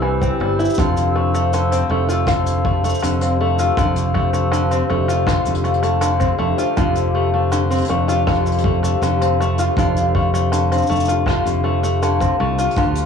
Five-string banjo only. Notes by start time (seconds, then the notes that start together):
Already playing: G3 C4 E4
0.02 E3
0.21 C4
0.41 G3
0.59 E4
0.78 D3 F4
1.16 A3
1.34 A3
1.54 D3
1.72 C4
1.91 A3
2.09 F4
2.27 D3 F4
2.65 A3
2.84 A3
3.02 D3
3.21 C4
3.40 A3
3.59 F4
3.78 D3 F4
4.14 A3
4.33 A3
4.52 D3
4.71 C4
4.90 A3
5.08 F4
5.27 D3 F4
5.64 A3
5.83 A3
6.01 D3
6.20 C4
6.39 A3
6.58 F4
6.77 D3 F4
7.15 A3
7.34 A3
7.52 D3
7.71 C4
7.90 A3
8.08 F4
8.27 D3 F4
8.64 A3
8.83 A3
9.03 D3
9.21 C4
9.40 A3
9.59 F4
9.78 D3 F4
10.15 A3
10.33 A3
10.52 D3
10.71 C4
10.89 A3
11.08 F4
11.26 D3 F4
11.64 A3
11.83 A3
12.02 D3
12.21 C4
12.40 A3
12.58 F4
12.77 D3 F4